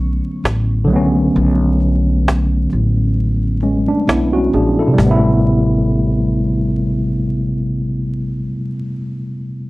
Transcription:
0, 0, Header, 1, 4, 480
1, 0, Start_track
1, 0, Tempo, 909091
1, 711, Time_signature, 4, 2, 24, 8
1, 5121, End_track
2, 0, Start_track
2, 0, Title_t, "Tine electric piano"
2, 0, Program_c, 0, 4
2, 0, Control_c, 0, 64, 127
2, 0, Note_on_c, 0, 50, 79
2, 0, Note_on_c, 0, 54, 69
2, 0, Note_on_c, 0, 57, 66
2, 0, Note_on_c, 0, 59, 74
2, 0, Note_on_c, 0, 61, 83
2, 436, Note_off_c, 0, 50, 0
2, 444, Note_off_c, 0, 54, 0
2, 446, Note_on_c, 0, 50, 73
2, 452, Note_off_c, 0, 57, 0
2, 460, Note_off_c, 0, 59, 0
2, 462, Note_on_c, 0, 54, 68
2, 477, Note_on_c, 0, 57, 67
2, 484, Note_off_c, 0, 61, 0
2, 492, Note_on_c, 0, 59, 67
2, 506, Note_on_c, 0, 61, 83
2, 1893, Note_off_c, 0, 57, 0
2, 1900, Note_off_c, 0, 59, 0
2, 1907, Note_off_c, 0, 61, 0
2, 1917, Note_on_c, 0, 61, 58
2, 1920, Note_on_c, 0, 56, 47
2, 2040, Note_off_c, 0, 61, 0
2, 2042, Note_off_c, 0, 56, 0
2, 2051, Note_on_c, 0, 62, 59
2, 2054, Note_on_c, 0, 57, 47
2, 2149, Note_off_c, 0, 62, 0
2, 2151, Note_off_c, 0, 57, 0
2, 2159, Note_on_c, 0, 64, 62
2, 2162, Note_on_c, 0, 59, 56
2, 2281, Note_off_c, 0, 64, 0
2, 2283, Note_off_c, 0, 59, 0
2, 2288, Note_on_c, 0, 66, 64
2, 2291, Note_on_c, 0, 61, 52
2, 2357, Note_off_c, 0, 50, 0
2, 2365, Note_off_c, 0, 54, 0
2, 2387, Note_off_c, 0, 66, 0
2, 2389, Note_off_c, 0, 61, 0
2, 2397, Note_on_c, 0, 68, 58
2, 2399, Note_on_c, 0, 62, 53
2, 2520, Note_off_c, 0, 68, 0
2, 2521, Note_off_c, 0, 62, 0
2, 2529, Note_on_c, 0, 69, 56
2, 2534, Note_on_c, 0, 64, 47
2, 2573, Note_on_c, 0, 48, 73
2, 2604, Note_on_c, 0, 55, 69
2, 2635, Note_on_c, 0, 57, 67
2, 2636, Control_c, 0, 64, 0
2, 2664, Note_on_c, 0, 59, 66
2, 2690, Note_off_c, 0, 64, 0
2, 2697, Note_on_c, 0, 64, 84
2, 2742, Control_c, 0, 64, 127
2, 2754, Note_off_c, 0, 69, 0
2, 4411, Note_off_c, 0, 48, 0
2, 4443, Note_off_c, 0, 55, 0
2, 4473, Note_off_c, 0, 57, 0
2, 4502, Note_off_c, 0, 59, 0
2, 4535, Note_off_c, 0, 64, 0
2, 5121, End_track
3, 0, Start_track
3, 0, Title_t, "Upright bass"
3, 0, Program_c, 1, 32
3, 0, Note_on_c, 1, 35, 81
3, 101, Note_off_c, 1, 35, 0
3, 232, Note_on_c, 1, 33, 77
3, 476, Note_off_c, 1, 33, 0
3, 476, Note_on_c, 1, 36, 73
3, 694, Note_off_c, 1, 36, 0
3, 717, Note_on_c, 1, 35, 98
3, 1413, Note_off_c, 1, 35, 0
3, 1439, Note_on_c, 1, 33, 73
3, 2027, Note_off_c, 1, 33, 0
3, 2152, Note_on_c, 1, 35, 78
3, 2372, Note_off_c, 1, 35, 0
3, 2393, Note_on_c, 1, 34, 79
3, 2612, Note_off_c, 1, 34, 0
3, 2632, Note_on_c, 1, 33, 79
3, 4470, Note_off_c, 1, 33, 0
3, 5121, End_track
4, 0, Start_track
4, 0, Title_t, "Cajon"
4, 239, Note_on_c, 9, 38, 103
4, 292, Note_off_c, 9, 38, 0
4, 470, Note_on_c, 9, 38, 26
4, 523, Note_off_c, 9, 38, 0
4, 951, Note_on_c, 9, 38, 30
4, 1004, Note_off_c, 9, 38, 0
4, 1205, Note_on_c, 9, 38, 100
4, 1258, Note_off_c, 9, 38, 0
4, 1424, Note_on_c, 9, 38, 31
4, 1477, Note_off_c, 9, 38, 0
4, 1905, Note_on_c, 9, 38, 32
4, 1958, Note_off_c, 9, 38, 0
4, 2160, Note_on_c, 9, 38, 97
4, 2213, Note_off_c, 9, 38, 0
4, 2389, Note_on_c, 9, 38, 25
4, 2442, Note_off_c, 9, 38, 0
4, 2630, Note_on_c, 9, 36, 96
4, 2683, Note_off_c, 9, 36, 0
4, 5121, End_track
0, 0, End_of_file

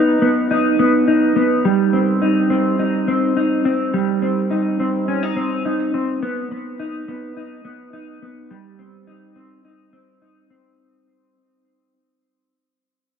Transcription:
0, 0, Header, 1, 2, 480
1, 0, Start_track
1, 0, Tempo, 571429
1, 1386, Time_signature, 4, 2, 24, 8
1, 11080, End_track
2, 0, Start_track
2, 0, Title_t, "Clean electric guitar"
2, 0, Program_c, 0, 27
2, 0, Note_on_c, 0, 59, 55
2, 0, Note_on_c, 0, 63, 51
2, 173, Note_off_c, 0, 59, 0
2, 183, Note_on_c, 0, 59, 54
2, 423, Note_off_c, 0, 63, 0
2, 426, Note_on_c, 0, 63, 51
2, 656, Note_off_c, 0, 59, 0
2, 666, Note_on_c, 0, 59, 59
2, 901, Note_off_c, 0, 63, 0
2, 904, Note_on_c, 0, 63, 55
2, 1133, Note_off_c, 0, 59, 0
2, 1143, Note_on_c, 0, 59, 59
2, 1385, Note_on_c, 0, 55, 72
2, 1432, Note_off_c, 0, 59, 0
2, 1622, Note_on_c, 0, 60, 54
2, 1859, Note_off_c, 0, 63, 0
2, 1862, Note_on_c, 0, 63, 53
2, 2092, Note_off_c, 0, 60, 0
2, 2102, Note_on_c, 0, 60, 59
2, 2342, Note_off_c, 0, 63, 0
2, 2346, Note_on_c, 0, 63, 51
2, 2577, Note_off_c, 0, 60, 0
2, 2587, Note_on_c, 0, 60, 57
2, 2825, Note_off_c, 0, 63, 0
2, 2828, Note_on_c, 0, 63, 47
2, 3058, Note_off_c, 0, 60, 0
2, 3068, Note_on_c, 0, 60, 57
2, 3297, Note_off_c, 0, 55, 0
2, 3307, Note_on_c, 0, 55, 69
2, 3537, Note_off_c, 0, 60, 0
2, 3547, Note_on_c, 0, 60, 49
2, 3781, Note_off_c, 0, 63, 0
2, 3785, Note_on_c, 0, 63, 54
2, 4020, Note_off_c, 0, 60, 0
2, 4030, Note_on_c, 0, 60, 50
2, 4265, Note_off_c, 0, 63, 0
2, 4268, Note_on_c, 0, 61, 50
2, 4392, Note_off_c, 0, 61, 0
2, 4392, Note_on_c, 0, 63, 43
2, 4496, Note_off_c, 0, 60, 0
2, 4506, Note_on_c, 0, 60, 54
2, 4739, Note_off_c, 0, 63, 0
2, 4749, Note_on_c, 0, 63, 50
2, 4980, Note_off_c, 0, 60, 0
2, 4990, Note_on_c, 0, 60, 56
2, 5226, Note_off_c, 0, 60, 0
2, 5227, Note_off_c, 0, 55, 0
2, 5229, Note_on_c, 0, 59, 70
2, 5461, Note_off_c, 0, 59, 0
2, 5471, Note_on_c, 0, 59, 50
2, 5704, Note_off_c, 0, 63, 0
2, 5707, Note_on_c, 0, 63, 55
2, 5939, Note_off_c, 0, 59, 0
2, 5949, Note_on_c, 0, 59, 55
2, 6185, Note_off_c, 0, 63, 0
2, 6188, Note_on_c, 0, 63, 50
2, 6414, Note_off_c, 0, 59, 0
2, 6424, Note_on_c, 0, 59, 51
2, 6660, Note_off_c, 0, 63, 0
2, 6663, Note_on_c, 0, 63, 48
2, 6898, Note_off_c, 0, 59, 0
2, 6908, Note_on_c, 0, 59, 54
2, 7145, Note_on_c, 0, 55, 68
2, 7195, Note_off_c, 0, 59, 0
2, 7383, Note_on_c, 0, 60, 46
2, 7618, Note_off_c, 0, 63, 0
2, 7621, Note_on_c, 0, 63, 50
2, 7858, Note_off_c, 0, 60, 0
2, 7862, Note_on_c, 0, 60, 51
2, 8100, Note_off_c, 0, 63, 0
2, 8103, Note_on_c, 0, 63, 44
2, 8337, Note_off_c, 0, 60, 0
2, 8340, Note_on_c, 0, 60, 48
2, 8580, Note_off_c, 0, 63, 0
2, 8583, Note_on_c, 0, 63, 43
2, 8820, Note_off_c, 0, 60, 0
2, 8823, Note_on_c, 0, 60, 55
2, 9532, Note_off_c, 0, 55, 0
2, 9532, Note_off_c, 0, 60, 0
2, 9532, Note_off_c, 0, 63, 0
2, 11080, End_track
0, 0, End_of_file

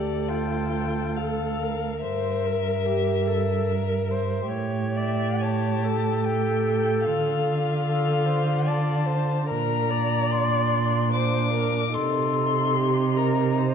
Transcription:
0, 0, Header, 1, 5, 480
1, 0, Start_track
1, 0, Tempo, 907716
1, 624, Tempo, 836820
1, 1117, Time_signature, 3, 2, 24, 8
1, 2544, Tempo, 894188
1, 3024, Tempo, 816327
1, 7918, End_track
2, 0, Start_track
2, 0, Title_t, "Violin"
2, 0, Program_c, 0, 40
2, 0, Note_on_c, 0, 74, 44
2, 148, Note_on_c, 0, 79, 52
2, 156, Note_off_c, 0, 74, 0
2, 618, Note_on_c, 0, 77, 43
2, 626, Note_off_c, 0, 79, 0
2, 1107, Note_off_c, 0, 77, 0
2, 1111, Note_on_c, 0, 76, 58
2, 2518, Note_off_c, 0, 76, 0
2, 2781, Note_on_c, 0, 76, 49
2, 3021, Note_on_c, 0, 81, 57
2, 3030, Note_off_c, 0, 76, 0
2, 3507, Note_on_c, 0, 79, 56
2, 3516, Note_off_c, 0, 81, 0
2, 3976, Note_off_c, 0, 79, 0
2, 3979, Note_on_c, 0, 77, 65
2, 4940, Note_on_c, 0, 81, 59
2, 4949, Note_off_c, 0, 77, 0
2, 5415, Note_off_c, 0, 81, 0
2, 5418, Note_on_c, 0, 82, 69
2, 5901, Note_on_c, 0, 84, 67
2, 5910, Note_off_c, 0, 82, 0
2, 6385, Note_off_c, 0, 84, 0
2, 6391, Note_on_c, 0, 86, 61
2, 6859, Note_on_c, 0, 84, 75
2, 6868, Note_off_c, 0, 86, 0
2, 7578, Note_on_c, 0, 82, 59
2, 7587, Note_off_c, 0, 84, 0
2, 7824, Note_off_c, 0, 82, 0
2, 7918, End_track
3, 0, Start_track
3, 0, Title_t, "Viola"
3, 0, Program_c, 1, 41
3, 0, Note_on_c, 1, 67, 43
3, 150, Note_on_c, 1, 65, 33
3, 158, Note_off_c, 1, 67, 0
3, 620, Note_on_c, 1, 69, 39
3, 628, Note_off_c, 1, 65, 0
3, 868, Note_on_c, 1, 70, 39
3, 876, Note_off_c, 1, 69, 0
3, 1114, Note_off_c, 1, 70, 0
3, 1117, Note_on_c, 1, 72, 37
3, 1358, Note_on_c, 1, 70, 39
3, 1366, Note_off_c, 1, 72, 0
3, 1589, Note_on_c, 1, 67, 42
3, 1598, Note_off_c, 1, 70, 0
3, 1829, Note_on_c, 1, 69, 38
3, 1838, Note_off_c, 1, 67, 0
3, 2068, Note_on_c, 1, 70, 44
3, 2076, Note_off_c, 1, 69, 0
3, 2304, Note_on_c, 1, 72, 41
3, 2312, Note_off_c, 1, 70, 0
3, 2534, Note_off_c, 1, 72, 0
3, 2537, Note_on_c, 1, 73, 40
3, 2780, Note_on_c, 1, 74, 47
3, 2788, Note_off_c, 1, 73, 0
3, 3020, Note_on_c, 1, 73, 45
3, 3028, Note_off_c, 1, 74, 0
3, 3274, Note_on_c, 1, 69, 51
3, 3283, Note_off_c, 1, 73, 0
3, 4456, Note_off_c, 1, 69, 0
3, 4460, Note_on_c, 1, 69, 46
3, 4690, Note_on_c, 1, 72, 48
3, 4699, Note_off_c, 1, 69, 0
3, 4931, Note_on_c, 1, 74, 45
3, 4939, Note_off_c, 1, 72, 0
3, 5169, Note_on_c, 1, 72, 46
3, 5177, Note_off_c, 1, 74, 0
3, 5413, Note_off_c, 1, 72, 0
3, 5417, Note_on_c, 1, 70, 48
3, 5659, Note_on_c, 1, 74, 58
3, 5667, Note_off_c, 1, 70, 0
3, 6376, Note_off_c, 1, 74, 0
3, 6380, Note_on_c, 1, 72, 52
3, 6614, Note_off_c, 1, 72, 0
3, 6618, Note_on_c, 1, 70, 51
3, 6853, Note_off_c, 1, 70, 0
3, 6864, Note_on_c, 1, 69, 45
3, 7342, Note_on_c, 1, 67, 51
3, 7350, Note_off_c, 1, 69, 0
3, 7583, Note_on_c, 1, 70, 45
3, 7591, Note_off_c, 1, 67, 0
3, 7826, Note_on_c, 1, 72, 50
3, 7835, Note_off_c, 1, 70, 0
3, 7918, Note_off_c, 1, 72, 0
3, 7918, End_track
4, 0, Start_track
4, 0, Title_t, "Violin"
4, 0, Program_c, 2, 40
4, 0, Note_on_c, 2, 69, 37
4, 1098, Note_off_c, 2, 69, 0
4, 1118, Note_on_c, 2, 70, 40
4, 2522, Note_off_c, 2, 70, 0
4, 2534, Note_on_c, 2, 67, 40
4, 3978, Note_on_c, 2, 65, 45
4, 3986, Note_off_c, 2, 67, 0
4, 5411, Note_off_c, 2, 65, 0
4, 5415, Note_on_c, 2, 62, 47
4, 6835, Note_off_c, 2, 62, 0
4, 6866, Note_on_c, 2, 63, 45
4, 7918, Note_off_c, 2, 63, 0
4, 7918, End_track
5, 0, Start_track
5, 0, Title_t, "Cello"
5, 0, Program_c, 3, 42
5, 0, Note_on_c, 3, 38, 37
5, 1112, Note_on_c, 3, 43, 43
5, 1121, Note_off_c, 3, 38, 0
5, 2542, Note_off_c, 3, 43, 0
5, 2544, Note_on_c, 3, 45, 40
5, 3980, Note_on_c, 3, 50, 48
5, 3989, Note_off_c, 3, 45, 0
5, 5423, Note_on_c, 3, 46, 49
5, 5432, Note_off_c, 3, 50, 0
5, 6866, Note_on_c, 3, 48, 50
5, 6875, Note_off_c, 3, 46, 0
5, 7918, Note_off_c, 3, 48, 0
5, 7918, End_track
0, 0, End_of_file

